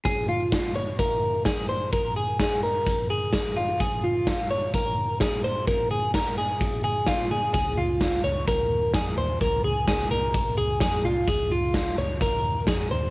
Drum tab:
HH |x-x-x-x-|x-x-x-x-|x-x-x-x-|x-x-x-x-|
SD |--o---o-|--o---o-|--o---o-|--o---o-|
BD |o-o-o-o-|o-o-o-o-|o-o-o-o-|o-o-o-o-|

HH |x-x-x-x-|x-x-x-x-|x-x-x-x-|
SD |--o---o-|--o---o-|--o---o-|
BD |o-o-o-o-|o-o-o-o-|o-o-o-o-|